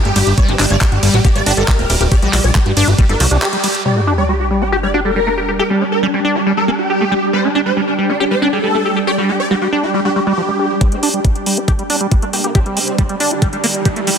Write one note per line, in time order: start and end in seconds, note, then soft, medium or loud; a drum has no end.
0.00 3.84 G3 medium
0.00 0.29 G4 loud
0.05 0.11 G1 medium
0.05 0.09 A3 medium
0.05 closed hi-hat soft
0.16 0.22 G1 loud
0.16 0.18 G3 loud
0.16 open hi-hat medium
0.16 ride medium
0.27 0.33 G1 medium
0.27 closed hi-hat soft
0.38 0.50 G3 medium
0.38 0.45 C4 medium
0.38 0.43 D5 loud
0.38 kick loud
0.38 closed hi-hat medium
0.48 0.55 G1 medium
0.48 0.53 A3 loud
0.48 0.55 C4 medium
0.48 0.54 G4 medium
0.48 closed hi-hat soft
0.59 0.66 G1 loud
0.59 0.66 D4 loud
0.59 0.65 G4 medium
0.59 clap medium
0.59 open hi-hat loud
0.59 ride medium
0.70 0.77 G1 loud
0.70 0.76 G3 medium
0.70 0.76 D5 medium
0.70 closed hi-hat soft
0.81 0.85 G3 medium
0.81 0.87 G4 medium
0.81 kick loud
0.81 clap loud
0.81 closed hi-hat medium
0.92 0.98 G1 medium
0.92 0.98 G4 medium
0.92 closed hi-hat soft
1.03 1.09 G1 loud
1.03 1.15 G3 medium
1.03 open hi-hat medium
1.03 ride medium
1.14 1.20 A1 medium
1.14 1.19 G4 medium
1.14 1.16 G4 medium
1.14 closed hi-hat soft
1.25 1.44 G3 medium
1.25 1.30 G4 medium
1.25 1.29 G4 loud
1.25 kick loud
1.25 closed hi-hat medium
1.35 1.42 G1 medium
1.35 1.40 G3 medium
1.35 1.41 D5 medium
1.35 closed hi-hat soft
1.46 1.53 G1 loud
1.46 1.53 D4 loud
1.46 1.52 G4 medium
1.46 open hi-hat loud
1.46 ride medium
1.57 1.64 G1 medium
1.57 1.63 G3 medium
1.57 2.03 A#4 loud
1.57 closed hi-hat soft
1.68 1.72 G3 medium
1.68 kick loud
1.68 clap loud
1.68 closed hi-hat medium
1.79 1.85 D1 medium
1.79 1.81 A3 medium
1.79 closed hi-hat soft
1.90 1.96 D1 loud
1.90 1.92 G4 medium
1.90 open hi-hat medium
1.90 ride medium
2.01 2.07 D1 loud
2.01 2.03 G4 medium
2.01 closed hi-hat soft
2.12 2.16 G4 loud
2.12 2.17 D5 loud
2.12 kick loud
2.12 closed hi-hat medium
2.22 2.29 A#1 medium
2.22 2.42 G3 loud
2.22 2.35 G3 medium
2.22 2.28 G4 medium
2.22 closed hi-hat soft
2.33 2.40 A#1 loud
2.33 2.36 A3 loud
2.33 2.39 G4 medium
2.33 clap medium
2.33 open hi-hat loud
2.33 ride medium
2.44 2.51 A#1 medium
2.44 2.50 D5 loud
2.44 closed hi-hat soft
2.55 2.59 G3 loud
2.55 2.61 G4 medium
2.55 kick loud
2.55 clap loud
2.55 closed hi-hat medium
2.66 2.72 G1 medium
2.66 2.72 G3 medium
2.66 2.72 G4 medium
2.66 closed hi-hat soft
2.77 2.83 G1 loud
2.77 2.89 D4 loud
2.77 open hi-hat medium
2.77 ride medium
2.88 2.94 G1 medium
2.88 2.90 G4 medium
2.88 2.93 G4 medium
2.88 closed hi-hat soft
2.98 3.05 G3 medium
2.98 3.04 G4 medium
2.98 kick loud
2.98 closed hi-hat medium
3.09 3.16 G1 medium
3.09 3.13 G3 medium
3.09 3.15 A#4 medium
3.09 closed hi-hat soft
3.20 3.27 C2 loud
3.20 3.24 F3 medium
3.20 3.27 G3 medium
3.20 3.26 G4 medium
3.20 open hi-hat loud
3.20 ride medium
3.31 3.38 C2 medium
3.31 3.38 G3 medium
3.31 3.37 D4 medium
3.31 3.77 G4 loud
3.31 closed hi-hat soft
3.42 3.48 G4 loud
3.42 clap loud
3.42 closed hi-hat medium
3.53 3.57 G3 medium
3.53 closed hi-hat soft
3.64 3.68 G3 medium
3.64 open hi-hat medium
3.64 ride medium
3.75 closed hi-hat soft
3.85 10.80 G3 medium
3.85 3.98 G3 medium
3.85 14.18 D4 medium
3.85 3.91 D5 medium
3.85 sub drop medium
3.96 4.00 A3 loud
3.96 4.02 G4 medium
3.96 14.18 G4 medium
4.07 4.13 D4 loud
4.07 4.13 G4 medium
4.18 4.24 G3 medium
4.18 4.24 D5 medium
4.24 14.18 G5 medium
4.29 4.33 G3 medium
4.29 4.35 G4 medium
4.40 4.46 G4 medium
4.51 4.63 G3 medium
4.62 4.64 G4 medium
4.62 4.67 G4 medium
4.72 4.77 G4 loud
4.72 4.78 G4 medium
4.83 4.87 G3 medium
4.83 4.89 D5 medium
4.94 5.00 D4 loud
4.94 5.00 G4 medium
5.05 5.11 G3 medium
5.05 5.51 A#4 loud
5.16 5.20 G3 medium
5.27 5.29 A3 medium
5.38 5.40 G4 medium
5.48 5.51 G4 medium
5.59 5.63 G4 loud
5.59 5.65 A#4 loud
5.70 5.83 G3 medium
5.70 5.76 D4 medium
5.81 5.84 A3 loud
5.81 5.87 D4 medium
5.92 5.98 A#4 medium
6.03 6.07 G3 loud
6.03 6.09 D4 medium
6.14 6.20 G3 medium
6.14 6.19 D4 medium
6.25 6.37 D4 loud
6.35 6.41 D4 medium
6.35 6.38 G4 medium
6.46 6.53 G3 medium
6.46 6.52 D4 medium
6.57 6.61 G3 medium
6.57 6.63 A#4 medium
6.68 6.71 A#3 loud
6.68 6.74 D4 medium
6.79 7.25 G4 loud
6.90 6.92 G4 medium
7.01 7.05 A3 medium
7.12 7.14 G3 loud
7.33 7.46 G3 medium
7.33 7.39 C5 loud
7.44 7.48 A3 loud
7.44 7.50 D4 medium
7.55 7.61 D4 medium
7.55 7.61 D4 loud
7.66 7.72 G3 medium
7.66 7.72 C5 medium
7.77 7.81 G3 medium
7.77 7.82 D4 medium
7.88 7.93 D4 medium
7.99 8.11 G3 medium
8.09 8.15 D4 medium
8.09 8.12 G4 medium
8.20 8.26 D4 medium
8.20 8.24 G4 loud
8.31 8.35 G3 medium
8.31 8.37 C5 medium
8.42 8.48 D4 medium
8.42 8.48 D4 loud
8.53 8.59 G3 medium
8.53 8.98 A4 loud
8.64 8.68 G3 medium
8.75 8.77 A3 medium
8.85 8.88 G4 medium
8.96 8.99 G4 medium
9.07 9.11 G4 loud
9.07 9.13 D5 loud
9.18 9.30 G3 medium
9.18 9.24 G4 medium
9.29 9.31 A3 loud
9.29 9.35 G4 medium
9.40 9.46 D5 loud
9.51 9.55 G3 loud
9.51 9.56 G4 medium
9.62 9.68 G3 medium
9.62 9.67 G4 medium
9.72 9.85 D4 loud
9.83 9.86 G4 medium
9.83 9.89 G4 medium
9.94 10.00 G3 medium
9.94 10.00 G4 medium
10.05 10.09 G3 medium
10.05 10.11 G4 medium
10.16 10.20 G3 medium
10.16 10.22 G4 medium
10.27 10.33 G3 loud
10.27 10.72 G4 loud
10.38 10.42 F3 medium
10.48 10.51 G3 medium
10.59 10.66 G4 medium
10.81 10.93 G3 medium
10.81 14.18 G3 medium
10.81 10.88 C4 medium
10.81 kick loud
10.81 closed hi-hat medium
10.81 riser medium
10.92 10.96 A3 loud
10.92 10.99 C4 medium
10.92 closed hi-hat soft
11.03 11.09 D4 loud
11.03 open hi-hat loud
11.14 11.20 G3 medium
11.14 closed hi-hat soft
11.25 11.29 G3 medium
11.25 kick loud
11.25 closed hi-hat medium
11.35 closed hi-hat soft
11.46 11.59 G3 medium
11.46 open hi-hat medium
11.57 11.60 G4 medium
11.57 closed hi-hat soft
11.68 11.72 G4 loud
11.68 kick loud
11.68 closed hi-hat medium
11.79 11.83 G3 medium
11.79 closed hi-hat soft
11.90 11.96 D4 loud
11.90 open hi-hat loud
12.01 12.07 G3 medium
12.12 12.16 G3 medium
12.12 kick loud
12.12 closed hi-hat medium
12.22 12.25 A3 medium
12.22 closed hi-hat soft
12.33 12.40 A#3 medium
12.33 12.36 G4 medium
12.33 open hi-hat medium
12.44 12.51 A#3 medium
12.44 12.47 G4 medium
12.44 closed hi-hat soft
12.55 13.16 C4 medium
12.55 12.59 G4 loud
12.55 kick loud
12.55 closed hi-hat medium
12.66 12.78 G3 medium
12.66 closed hi-hat soft
12.77 12.79 A3 loud
12.77 open hi-hat loud
12.88 closed hi-hat soft
12.98 13.03 G3 loud
12.98 kick loud
12.98 closed hi-hat medium
13.09 13.16 G3 medium
13.09 closed hi-hat soft
13.20 13.33 D4 loud
13.20 open hi-hat medium
13.31 13.34 G4 medium
13.31 closed hi-hat soft
13.42 13.48 G3 medium
13.42 kick loud
13.42 closed hi-hat medium
13.53 13.57 G3 medium
13.53 closed hi-hat soft
13.64 13.66 A#3 loud
13.64 open hi-hat loud
13.75 closed hi-hat soft
13.85 13.88 G4 medium
13.85 kick loud
13.85 closed hi-hat medium
13.96 14.00 A3 medium
13.96 closed hi-hat soft
14.07 14.10 G3 loud
14.07 open hi-hat medium